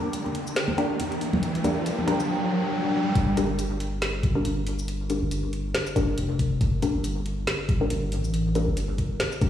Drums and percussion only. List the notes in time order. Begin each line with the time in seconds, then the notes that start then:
0.13 closed hi-hat, shaker
0.26 high conga
0.35 closed hi-hat
0.47 shaker
0.56 snare, closed hi-hat
0.68 high conga
0.78 kick, closed hi-hat
1.00 closed hi-hat, high conga
1.12 closed hi-hat
1.21 open hi-hat
1.33 high conga, low conga
1.43 closed hi-hat
1.55 closed hi-hat
1.64 closed hi-hat, high conga, shaker
1.86 closed hi-hat, shaker
1.99 high conga
2.08 closed hi-hat
2.20 shaker
3.15 kick, closed hi-hat
3.37 closed hi-hat, shaker
3.59 closed hi-hat, shaker
3.80 closed hi-hat
4.02 snare, closed hi-hat
4.23 kick, closed hi-hat
4.45 closed hi-hat
4.67 open hi-hat
4.79 shaker
4.88 closed hi-hat
5.10 closed hi-hat, shaker
5.31 closed hi-hat, shaker
5.53 closed hi-hat
5.75 snare, closed hi-hat
5.87 shaker
5.96 kick, closed hi-hat, shaker
6.18 closed hi-hat
6.39 kick, open hi-hat
6.61 kick, closed hi-hat
6.82 closed hi-hat, shaker
7.04 closed hi-hat, shaker
7.26 closed hi-hat
7.47 snare, closed hi-hat
7.69 kick, closed hi-hat
7.90 closed hi-hat
8.12 open hi-hat
8.24 shaker
8.34 closed hi-hat
8.55 closed hi-hat, shaker
8.77 closed hi-hat, shaker
8.98 kick, closed hi-hat
9.20 snare, closed hi-hat
9.32 shaker
9.41 kick, closed hi-hat, shaker